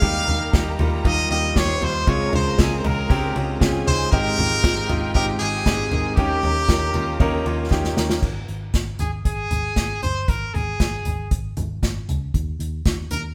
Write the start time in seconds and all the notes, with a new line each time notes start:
Already playing: F5
0.01 D#2 D#3 G3 A#3 D#4 G4 A#4 A#5, kick, ride
0.27 D#2 G3 A#3 D#4 G4, floor tom, ride
0.53 D#2 D#3 G3 A#3 D#4 G4, kick, snare, ride
0.78 D#2 G3 A#3 D#4 F4 G4, floor tom, ride
1.04 D#2 D#3 G3 A#3 D#4 F4 G4 D#5, kick, ride
1.29 D#2 G3 A#3 D#4 G4 D#5, ride
1.55 D#2 D#3 G3 A#3 D#4 G4 C5 C#5 C6, kick, snare, ride
1.81 D#2 G3 A#3 D#4 F4 G4 C5, floor tom, ride
2.07 C#2 C#3 F3 G#3 C4 C#4 F4 G#4 A#4 C#5 A#5, kick, ride
2.32 C#2 G#3 C4 C#4 F4 G#4 C5, floor tom, ride
2.58 C#2 C#3 F3 G#3 C4 C#4 F4 G#4, kick, snare, ride
2.78 C5
2.83 C#2 G#3 C4 C#4 F4 G#4 A#4, floor tom, ride
3.09 C#2 F3 G#3 C4 C#4 G4 G#4, kick, ride
3.34 C#2 G#3 C4 C#4 F4 G#4, ride
3.59 C#2 C#3 F3 G#3 C4 C#4 F4 G#4 G#5, kick, snare, ride
3.85 C#2 G#3 C4 C#4 D#4 G#4 C5, floor tom, ride
4.11 G#1 G#2 G#3 C4 D#4 G4 A#4 G5, kick, ride
4.37 G#1 G#3 C4 D#4 F4 G4, floor tom, ride
4.63 G#1 G#3 C4 D#4 G4 G#4, kick, snare, ride
4.88 G#1 G#3 C4 D#4 F4 G4, floor tom, ride
5.14 G#1 G#3 C4 D#4 G4 A#4, kick, ride
5.39 G#1 G#3 C4 D#4 G4 G#4, ride
5.66 G#1 G#3 C4 D#4 G4 G#4 G#5, kick, snare, ride
5.91 G#1 G#3 C4 D#4 G4 A#4, floor tom, ride
6.15 D#2 D#3 A#3 C#4 D#4 G4 A#4 A#5, kick, ride
6.42 D#2 A#3 C#4 D#4 G4, floor tom, ride
6.68 D#2 D#3 A#3 C#4 D#4 G4 A#4, kick, snare, ride
6.93 D#2 A#3 C#4 D#4 F4 G4, floor tom, ride
7.19 D#2 D#3 A#3 C#4 D#4 G4 A#4, kick, ride
7.45 D#2 A#3 C#4 D#4 F4 G4, ride
7.71 D#2 D#3 A#3 C#4 D#4 G4, kick, snare
7.84 snare
7.96 D#2 A#3 C#4 D#4 G4 A#4, snare
8.10 snare
8.22 G#1, kick, crash
8.48 G#1, closed hi-hat
8.74 G#1, kick, snare, closed hi-hat
8.99 G#1 G#4, closed hi-hat, floor tom
9.25 G#1 G#4, kick, closed hi-hat
9.51 G#1, closed hi-hat, floor tom
9.76 G#1, kick, snare, closed hi-hat
10.02 G1 C5, closed hi-hat, floor tom
10.28 G#1 A#4, kick, closed hi-hat
10.54 G#1 G#4, closed hi-hat, floor tom
10.80 G#1, kick, snare, closed hi-hat
11.05 G#1, closed hi-hat, floor tom
11.31 G#1, kick, closed hi-hat
11.57 G#1, closed hi-hat, floor tom
11.83 G#1, kick, snare, closed hi-hat
12.09 C#2, closed hi-hat, floor tom
12.34 D#2, kick, closed hi-hat
12.59 D#2, closed hi-hat
12.86 D#2, kick, snare, closed hi-hat
13.11 D#2 A#4, closed hi-hat, floor tom